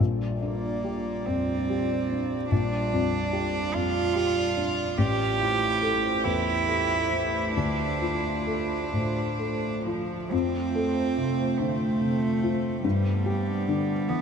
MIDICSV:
0, 0, Header, 1, 4, 480
1, 0, Start_track
1, 0, Tempo, 848656
1, 955, Tempo, 827586
1, 1432, Time_signature, 6, 3, 24, 8
1, 3355, Tempo, 878477
1, 4795, Tempo, 930233
1, 5755, Tempo, 837989
1, 7985, End_track
2, 0, Start_track
2, 0, Title_t, "Analog synth pad"
2, 0, Program_c, 0, 89
2, 0, Note_on_c, 0, 55, 51
2, 0, Note_on_c, 0, 65, 53
2, 0, Note_on_c, 0, 74, 54
2, 2841, Note_off_c, 0, 65, 0
2, 2843, Note_off_c, 0, 55, 0
2, 2858, Note_on_c, 0, 72, 58
2, 2861, Note_on_c, 0, 57, 60
2, 2862, Note_on_c, 0, 64, 60
2, 2864, Note_off_c, 0, 74, 0
2, 4304, Note_off_c, 0, 64, 0
2, 4305, Note_on_c, 0, 65, 50
2, 5752, Note_off_c, 0, 72, 0
2, 5753, Note_off_c, 0, 57, 0
2, 5755, Note_off_c, 0, 65, 0
2, 5758, Note_on_c, 0, 72, 58
2, 5761, Note_on_c, 0, 57, 66
2, 5761, Note_on_c, 0, 65, 55
2, 7177, Note_off_c, 0, 72, 0
2, 7178, Note_off_c, 0, 57, 0
2, 7178, Note_off_c, 0, 65, 0
2, 7191, Note_on_c, 0, 74, 57
2, 7193, Note_on_c, 0, 59, 61
2, 7194, Note_on_c, 0, 62, 54
2, 7985, Note_off_c, 0, 59, 0
2, 7985, Note_off_c, 0, 62, 0
2, 7985, Note_off_c, 0, 74, 0
2, 7985, End_track
3, 0, Start_track
3, 0, Title_t, "Felt piano"
3, 0, Program_c, 1, 0
3, 0, Control_c, 1, 64, 127
3, 0, Note_on_c, 1, 34, 49
3, 5, Control_c, 1, 64, 0
3, 109, Control_c, 1, 64, 127
3, 239, Note_on_c, 1, 62, 37
3, 477, Note_on_c, 1, 67, 36
3, 623, Note_off_c, 1, 62, 0
3, 721, Note_on_c, 1, 41, 35
3, 860, Note_off_c, 1, 67, 0
3, 959, Note_on_c, 1, 67, 36
3, 1101, Note_off_c, 1, 41, 0
3, 1201, Note_on_c, 1, 62, 37
3, 1339, Note_off_c, 1, 67, 0
3, 1411, Note_off_c, 1, 34, 0
3, 1433, Note_on_c, 1, 34, 48
3, 1442, Control_c, 1, 64, 0
3, 1545, Control_c, 1, 64, 127
3, 1577, Note_off_c, 1, 62, 0
3, 1672, Note_on_c, 1, 41, 47
3, 1907, Note_on_c, 1, 67, 42
3, 2051, Note_off_c, 1, 41, 0
3, 2146, Note_on_c, 1, 41, 43
3, 2288, Note_off_c, 1, 67, 0
3, 2383, Note_on_c, 1, 67, 39
3, 2530, Note_off_c, 1, 41, 0
3, 2626, Note_on_c, 1, 62, 44
3, 2769, Note_off_c, 1, 67, 0
3, 2843, Note_off_c, 1, 34, 0
3, 2863, Note_on_c, 1, 33, 54
3, 2866, Note_off_c, 1, 62, 0
3, 2876, Control_c, 1, 64, 0
3, 2966, Control_c, 1, 64, 127
3, 3105, Note_on_c, 1, 64, 47
3, 3353, Note_on_c, 1, 69, 39
3, 3493, Note_off_c, 1, 64, 0
3, 3586, Note_on_c, 1, 40, 42
3, 3730, Note_off_c, 1, 69, 0
3, 3821, Note_on_c, 1, 69, 36
3, 3967, Note_off_c, 1, 40, 0
3, 4060, Note_on_c, 1, 64, 35
3, 4207, Note_off_c, 1, 69, 0
3, 4283, Note_off_c, 1, 33, 0
3, 4304, Note_off_c, 1, 64, 0
3, 4304, Note_on_c, 1, 38, 38
3, 4318, Control_c, 1, 64, 0
3, 4400, Control_c, 1, 64, 127
3, 4551, Note_on_c, 1, 65, 36
3, 4796, Note_on_c, 1, 69, 31
3, 4937, Note_off_c, 1, 65, 0
3, 5036, Note_on_c, 1, 45, 30
3, 5175, Note_off_c, 1, 69, 0
3, 5273, Note_on_c, 1, 69, 31
3, 5422, Note_off_c, 1, 45, 0
3, 5519, Note_on_c, 1, 65, 33
3, 5663, Note_off_c, 1, 69, 0
3, 5733, Note_off_c, 1, 38, 0
3, 5754, Note_on_c, 1, 41, 57
3, 5755, Note_off_c, 1, 65, 0
3, 5765, Control_c, 1, 64, 0
3, 5867, Control_c, 1, 64, 127
3, 6000, Note_on_c, 1, 69, 46
3, 6243, Note_on_c, 1, 48, 40
3, 6386, Note_off_c, 1, 69, 0
3, 6482, Note_on_c, 1, 50, 33
3, 6626, Note_off_c, 1, 48, 0
3, 6720, Note_on_c, 1, 48, 35
3, 6721, Note_off_c, 1, 50, 0
3, 6963, Note_on_c, 1, 65, 42
3, 7102, Note_off_c, 1, 48, 0
3, 7174, Note_off_c, 1, 41, 0
3, 7199, Note_on_c, 1, 43, 53
3, 7200, Note_off_c, 1, 65, 0
3, 7207, Control_c, 1, 64, 0
3, 7299, Control_c, 1, 64, 127
3, 7436, Note_on_c, 1, 67, 46
3, 7680, Note_on_c, 1, 50, 38
3, 7819, Note_off_c, 1, 67, 0
3, 7918, Note_on_c, 1, 52, 35
3, 7985, Note_off_c, 1, 43, 0
3, 7985, Note_off_c, 1, 50, 0
3, 7985, Note_off_c, 1, 52, 0
3, 7985, End_track
4, 0, Start_track
4, 0, Title_t, "Cello"
4, 0, Program_c, 2, 42
4, 233, Note_on_c, 2, 58, 58
4, 714, Note_on_c, 2, 60, 62
4, 723, Note_off_c, 2, 58, 0
4, 1427, Note_off_c, 2, 60, 0
4, 1431, Note_on_c, 2, 62, 73
4, 2147, Note_on_c, 2, 65, 93
4, 2156, Note_off_c, 2, 62, 0
4, 2863, Note_on_c, 2, 67, 85
4, 2872, Note_off_c, 2, 65, 0
4, 3587, Note_on_c, 2, 64, 82
4, 3596, Note_off_c, 2, 67, 0
4, 4300, Note_off_c, 2, 64, 0
4, 4303, Note_on_c, 2, 62, 54
4, 5496, Note_off_c, 2, 62, 0
4, 5518, Note_on_c, 2, 53, 58
4, 5756, Note_on_c, 2, 60, 81
4, 5765, Note_off_c, 2, 53, 0
4, 6482, Note_on_c, 2, 57, 78
4, 6491, Note_off_c, 2, 60, 0
4, 7188, Note_off_c, 2, 57, 0
4, 7191, Note_on_c, 2, 55, 78
4, 7911, Note_on_c, 2, 59, 73
4, 7920, Note_off_c, 2, 55, 0
4, 7985, Note_off_c, 2, 59, 0
4, 7985, End_track
0, 0, End_of_file